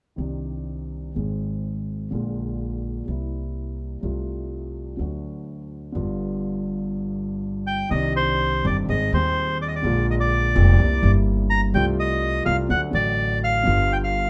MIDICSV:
0, 0, Header, 1, 4, 480
1, 0, Start_track
1, 0, Key_signature, -3, "minor"
1, 0, Tempo, 481155
1, 187, Time_signature, 4, 2, 24, 8
1, 6422, Tempo, 489396
1, 8822, Tempo, 478469
1, 14254, End_track
2, 0, Start_track
2, 0, Title_t, "Bandoneon"
2, 0, Program_c, 0, 23
2, 7629, Note_on_c, 0, 79, 81
2, 7852, Note_off_c, 0, 79, 0
2, 7862, Note_on_c, 0, 75, 79
2, 8087, Note_off_c, 0, 75, 0
2, 8114, Note_on_c, 0, 72, 73
2, 8601, Note_off_c, 0, 72, 0
2, 8607, Note_on_c, 0, 74, 67
2, 8708, Note_off_c, 0, 74, 0
2, 8833, Note_on_c, 0, 75, 75
2, 9052, Note_off_c, 0, 75, 0
2, 9079, Note_on_c, 0, 72, 71
2, 9518, Note_off_c, 0, 72, 0
2, 9557, Note_on_c, 0, 74, 72
2, 9615, Note_off_c, 0, 74, 0
2, 9619, Note_on_c, 0, 75, 60
2, 9685, Note_off_c, 0, 75, 0
2, 9695, Note_on_c, 0, 74, 67
2, 10005, Note_off_c, 0, 74, 0
2, 10047, Note_on_c, 0, 75, 63
2, 10095, Note_off_c, 0, 75, 0
2, 10143, Note_on_c, 0, 74, 81
2, 11059, Note_off_c, 0, 74, 0
2, 11446, Note_on_c, 0, 82, 84
2, 11556, Note_off_c, 0, 82, 0
2, 11693, Note_on_c, 0, 79, 74
2, 11801, Note_off_c, 0, 79, 0
2, 11943, Note_on_c, 0, 75, 77
2, 12385, Note_off_c, 0, 75, 0
2, 12404, Note_on_c, 0, 77, 76
2, 12514, Note_off_c, 0, 77, 0
2, 12654, Note_on_c, 0, 78, 76
2, 12761, Note_off_c, 0, 78, 0
2, 12895, Note_on_c, 0, 74, 77
2, 13340, Note_off_c, 0, 74, 0
2, 13391, Note_on_c, 0, 77, 77
2, 13880, Note_on_c, 0, 79, 65
2, 13881, Note_off_c, 0, 77, 0
2, 13930, Note_off_c, 0, 79, 0
2, 13992, Note_on_c, 0, 77, 68
2, 14254, Note_off_c, 0, 77, 0
2, 14254, End_track
3, 0, Start_track
3, 0, Title_t, "Grand piano"
3, 0, Program_c, 1, 0
3, 161, Note_on_c, 1, 51, 40
3, 174, Note_on_c, 1, 60, 40
3, 183, Note_on_c, 1, 48, 50
3, 185, Note_on_c, 1, 36, 49
3, 185, Note_on_c, 1, 62, 38
3, 205, Note_on_c, 1, 67, 47
3, 1101, Note_off_c, 1, 51, 0
3, 1108, Note_off_c, 1, 60, 0
3, 1112, Note_off_c, 1, 48, 0
3, 1114, Note_off_c, 1, 36, 0
3, 1114, Note_off_c, 1, 62, 0
3, 1123, Note_off_c, 1, 67, 0
3, 1136, Note_on_c, 1, 51, 34
3, 1150, Note_on_c, 1, 56, 33
3, 1156, Note_on_c, 1, 32, 44
3, 1160, Note_on_c, 1, 44, 47
3, 1163, Note_on_c, 1, 60, 36
3, 1177, Note_on_c, 1, 68, 38
3, 2060, Note_off_c, 1, 51, 0
3, 2067, Note_off_c, 1, 56, 0
3, 2070, Note_off_c, 1, 32, 0
3, 2072, Note_off_c, 1, 44, 0
3, 2074, Note_off_c, 1, 60, 0
3, 2081, Note_off_c, 1, 68, 0
3, 2101, Note_on_c, 1, 50, 47
3, 2117, Note_on_c, 1, 56, 41
3, 2122, Note_on_c, 1, 34, 50
3, 2123, Note_on_c, 1, 46, 54
3, 2126, Note_on_c, 1, 58, 39
3, 2143, Note_on_c, 1, 65, 50
3, 3015, Note_off_c, 1, 50, 0
3, 3023, Note_off_c, 1, 56, 0
3, 3025, Note_off_c, 1, 34, 0
3, 3026, Note_off_c, 1, 46, 0
3, 3027, Note_off_c, 1, 58, 0
3, 3036, Note_off_c, 1, 65, 0
3, 3048, Note_on_c, 1, 48, 39
3, 3063, Note_off_c, 1, 48, 0
3, 3068, Note_on_c, 1, 55, 36
3, 3073, Note_on_c, 1, 36, 45
3, 3073, Note_on_c, 1, 48, 46
3, 3077, Note_on_c, 1, 58, 35
3, 3093, Note_on_c, 1, 64, 46
3, 3974, Note_off_c, 1, 55, 0
3, 3976, Note_off_c, 1, 36, 0
3, 3977, Note_off_c, 1, 48, 0
3, 3979, Note_off_c, 1, 58, 0
3, 3987, Note_off_c, 1, 64, 0
3, 4001, Note_on_c, 1, 48, 50
3, 4013, Note_on_c, 1, 55, 46
3, 4016, Note_off_c, 1, 48, 0
3, 4023, Note_on_c, 1, 36, 53
3, 4023, Note_on_c, 1, 48, 56
3, 4028, Note_on_c, 1, 57, 44
3, 4041, Note_on_c, 1, 65, 52
3, 4929, Note_off_c, 1, 55, 0
3, 4934, Note_off_c, 1, 36, 0
3, 4934, Note_off_c, 1, 48, 0
3, 4937, Note_off_c, 1, 57, 0
3, 4943, Note_off_c, 1, 65, 0
3, 4957, Note_on_c, 1, 50, 44
3, 4972, Note_off_c, 1, 50, 0
3, 4973, Note_on_c, 1, 54, 35
3, 4977, Note_on_c, 1, 38, 42
3, 4980, Note_on_c, 1, 50, 49
3, 4983, Note_on_c, 1, 57, 38
3, 4996, Note_on_c, 1, 66, 50
3, 5887, Note_off_c, 1, 54, 0
3, 5890, Note_off_c, 1, 38, 0
3, 5891, Note_off_c, 1, 50, 0
3, 5893, Note_off_c, 1, 57, 0
3, 5899, Note_off_c, 1, 66, 0
3, 5910, Note_on_c, 1, 50, 51
3, 5927, Note_on_c, 1, 55, 45
3, 5935, Note_on_c, 1, 43, 65
3, 5936, Note_on_c, 1, 31, 62
3, 5940, Note_on_c, 1, 59, 47
3, 5953, Note_on_c, 1, 65, 56
3, 7759, Note_off_c, 1, 50, 0
3, 7768, Note_off_c, 1, 55, 0
3, 7771, Note_off_c, 1, 43, 0
3, 7772, Note_off_c, 1, 31, 0
3, 7774, Note_off_c, 1, 59, 0
3, 7780, Note_off_c, 1, 65, 0
3, 7848, Note_on_c, 1, 51, 68
3, 7860, Note_on_c, 1, 60, 59
3, 7867, Note_on_c, 1, 48, 70
3, 7871, Note_on_c, 1, 36, 77
3, 7873, Note_on_c, 1, 62, 55
3, 7889, Note_on_c, 1, 67, 73
3, 8537, Note_off_c, 1, 51, 0
3, 8544, Note_off_c, 1, 60, 0
3, 8547, Note_off_c, 1, 48, 0
3, 8549, Note_off_c, 1, 36, 0
3, 8550, Note_off_c, 1, 62, 0
3, 8558, Note_off_c, 1, 67, 0
3, 8589, Note_on_c, 1, 51, 58
3, 8591, Note_on_c, 1, 31, 72
3, 8591, Note_on_c, 1, 43, 74
3, 8592, Note_on_c, 1, 60, 58
3, 8592, Note_on_c, 1, 67, 73
3, 8593, Note_on_c, 1, 62, 54
3, 8786, Note_off_c, 1, 51, 0
3, 8787, Note_off_c, 1, 31, 0
3, 8787, Note_off_c, 1, 43, 0
3, 8787, Note_off_c, 1, 67, 0
3, 8788, Note_off_c, 1, 60, 0
3, 8788, Note_off_c, 1, 62, 0
3, 8830, Note_on_c, 1, 32, 62
3, 8831, Note_on_c, 1, 44, 65
3, 8831, Note_on_c, 1, 51, 53
3, 8833, Note_on_c, 1, 60, 49
3, 8835, Note_on_c, 1, 56, 53
3, 8835, Note_on_c, 1, 68, 55
3, 9029, Note_off_c, 1, 32, 0
3, 9029, Note_off_c, 1, 44, 0
3, 9029, Note_off_c, 1, 51, 0
3, 9030, Note_off_c, 1, 60, 0
3, 9031, Note_off_c, 1, 56, 0
3, 9031, Note_off_c, 1, 68, 0
3, 9052, Note_on_c, 1, 51, 49
3, 9070, Note_on_c, 1, 56, 48
3, 9076, Note_on_c, 1, 39, 69
3, 9077, Note_on_c, 1, 27, 62
3, 9081, Note_on_c, 1, 60, 49
3, 9097, Note_on_c, 1, 68, 63
3, 9741, Note_off_c, 1, 51, 0
3, 9750, Note_off_c, 1, 56, 0
3, 9753, Note_off_c, 1, 39, 0
3, 9754, Note_off_c, 1, 27, 0
3, 9756, Note_off_c, 1, 60, 0
3, 9764, Note_off_c, 1, 68, 0
3, 9767, Note_on_c, 1, 50, 64
3, 9774, Note_on_c, 1, 56, 60
3, 9781, Note_on_c, 1, 34, 74
3, 9784, Note_on_c, 1, 46, 78
3, 9792, Note_on_c, 1, 58, 61
3, 9805, Note_on_c, 1, 65, 69
3, 10456, Note_off_c, 1, 50, 0
3, 10460, Note_off_c, 1, 56, 0
3, 10463, Note_off_c, 1, 34, 0
3, 10465, Note_off_c, 1, 46, 0
3, 10469, Note_off_c, 1, 58, 0
3, 10475, Note_off_c, 1, 65, 0
3, 10499, Note_on_c, 1, 50, 68
3, 10502, Note_on_c, 1, 29, 85
3, 10503, Note_on_c, 1, 56, 62
3, 10503, Note_on_c, 1, 65, 74
3, 10505, Note_on_c, 1, 41, 80
3, 10506, Note_on_c, 1, 58, 59
3, 10700, Note_off_c, 1, 50, 0
3, 10702, Note_off_c, 1, 29, 0
3, 10702, Note_off_c, 1, 65, 0
3, 10703, Note_off_c, 1, 41, 0
3, 10703, Note_off_c, 1, 56, 0
3, 10704, Note_off_c, 1, 58, 0
3, 10731, Note_on_c, 1, 48, 65
3, 10736, Note_on_c, 1, 36, 67
3, 10738, Note_on_c, 1, 58, 57
3, 10739, Note_on_c, 1, 55, 51
3, 10741, Note_on_c, 1, 64, 56
3, 10937, Note_off_c, 1, 48, 0
3, 10939, Note_off_c, 1, 36, 0
3, 10940, Note_off_c, 1, 55, 0
3, 10940, Note_off_c, 1, 58, 0
3, 10941, Note_off_c, 1, 64, 0
3, 10952, Note_on_c, 1, 48, 58
3, 10967, Note_on_c, 1, 55, 54
3, 10969, Note_on_c, 1, 31, 65
3, 10973, Note_on_c, 1, 43, 61
3, 10979, Note_on_c, 1, 58, 49
3, 10997, Note_on_c, 1, 64, 63
3, 11647, Note_off_c, 1, 48, 0
3, 11654, Note_off_c, 1, 55, 0
3, 11655, Note_off_c, 1, 31, 0
3, 11657, Note_off_c, 1, 43, 0
3, 11660, Note_off_c, 1, 58, 0
3, 11669, Note_off_c, 1, 64, 0
3, 11673, Note_on_c, 1, 48, 76
3, 11687, Note_on_c, 1, 55, 67
3, 11688, Note_off_c, 1, 48, 0
3, 11695, Note_on_c, 1, 48, 82
3, 11696, Note_on_c, 1, 36, 82
3, 11700, Note_on_c, 1, 57, 67
3, 11714, Note_on_c, 1, 65, 82
3, 12373, Note_off_c, 1, 55, 0
3, 12378, Note_off_c, 1, 36, 0
3, 12378, Note_off_c, 1, 48, 0
3, 12380, Note_off_c, 1, 57, 0
3, 12387, Note_off_c, 1, 65, 0
3, 12405, Note_on_c, 1, 48, 77
3, 12406, Note_on_c, 1, 36, 81
3, 12406, Note_on_c, 1, 65, 76
3, 12409, Note_on_c, 1, 55, 60
3, 12410, Note_on_c, 1, 57, 61
3, 12611, Note_off_c, 1, 36, 0
3, 12611, Note_off_c, 1, 65, 0
3, 12612, Note_off_c, 1, 48, 0
3, 12612, Note_off_c, 1, 55, 0
3, 12612, Note_off_c, 1, 57, 0
3, 12639, Note_on_c, 1, 50, 70
3, 12641, Note_on_c, 1, 38, 71
3, 12644, Note_on_c, 1, 57, 50
3, 12645, Note_on_c, 1, 54, 52
3, 12649, Note_on_c, 1, 66, 61
3, 12848, Note_off_c, 1, 38, 0
3, 12848, Note_off_c, 1, 50, 0
3, 12849, Note_off_c, 1, 54, 0
3, 12849, Note_off_c, 1, 57, 0
3, 12852, Note_off_c, 1, 66, 0
3, 12863, Note_on_c, 1, 50, 54
3, 12873, Note_on_c, 1, 54, 50
3, 12886, Note_on_c, 1, 33, 71
3, 12886, Note_on_c, 1, 45, 67
3, 12891, Note_on_c, 1, 57, 50
3, 12903, Note_on_c, 1, 66, 60
3, 13563, Note_off_c, 1, 50, 0
3, 13569, Note_off_c, 1, 54, 0
3, 13575, Note_off_c, 1, 33, 0
3, 13575, Note_off_c, 1, 45, 0
3, 13577, Note_off_c, 1, 57, 0
3, 13583, Note_off_c, 1, 66, 0
3, 13587, Note_on_c, 1, 50, 65
3, 13598, Note_on_c, 1, 55, 54
3, 13605, Note_on_c, 1, 31, 74
3, 13606, Note_on_c, 1, 43, 76
3, 13610, Note_on_c, 1, 59, 62
3, 13625, Note_on_c, 1, 65, 69
3, 14254, Note_off_c, 1, 31, 0
3, 14254, Note_off_c, 1, 43, 0
3, 14254, Note_off_c, 1, 50, 0
3, 14254, Note_off_c, 1, 55, 0
3, 14254, Note_off_c, 1, 59, 0
3, 14254, Note_off_c, 1, 65, 0
3, 14254, End_track
4, 0, Start_track
4, 0, Title_t, "Upright bass"
4, 0, Program_c, 2, 32
4, 181, Note_on_c, 2, 36, 50
4, 1111, Note_off_c, 2, 36, 0
4, 1157, Note_on_c, 2, 32, 49
4, 2071, Note_off_c, 2, 32, 0
4, 2114, Note_on_c, 2, 34, 53
4, 3021, Note_off_c, 2, 34, 0
4, 3070, Note_on_c, 2, 36, 55
4, 3975, Note_off_c, 2, 36, 0
4, 4019, Note_on_c, 2, 36, 55
4, 4932, Note_off_c, 2, 36, 0
4, 4978, Note_on_c, 2, 38, 53
4, 5890, Note_off_c, 2, 38, 0
4, 5935, Note_on_c, 2, 31, 59
4, 7772, Note_off_c, 2, 31, 0
4, 7866, Note_on_c, 2, 36, 76
4, 8547, Note_off_c, 2, 36, 0
4, 8589, Note_on_c, 2, 31, 80
4, 8786, Note_off_c, 2, 31, 0
4, 8823, Note_on_c, 2, 32, 77
4, 9025, Note_off_c, 2, 32, 0
4, 9063, Note_on_c, 2, 39, 80
4, 9747, Note_off_c, 2, 39, 0
4, 9781, Note_on_c, 2, 34, 73
4, 10463, Note_off_c, 2, 34, 0
4, 10499, Note_on_c, 2, 29, 96
4, 10701, Note_off_c, 2, 29, 0
4, 10740, Note_on_c, 2, 36, 72
4, 10941, Note_off_c, 2, 36, 0
4, 10971, Note_on_c, 2, 31, 86
4, 11657, Note_off_c, 2, 31, 0
4, 11685, Note_on_c, 2, 36, 80
4, 12372, Note_off_c, 2, 36, 0
4, 12410, Note_on_c, 2, 36, 86
4, 12612, Note_off_c, 2, 36, 0
4, 12649, Note_on_c, 2, 38, 84
4, 12851, Note_off_c, 2, 38, 0
4, 12881, Note_on_c, 2, 33, 82
4, 13573, Note_off_c, 2, 33, 0
4, 13618, Note_on_c, 2, 31, 79
4, 14254, Note_off_c, 2, 31, 0
4, 14254, End_track
0, 0, End_of_file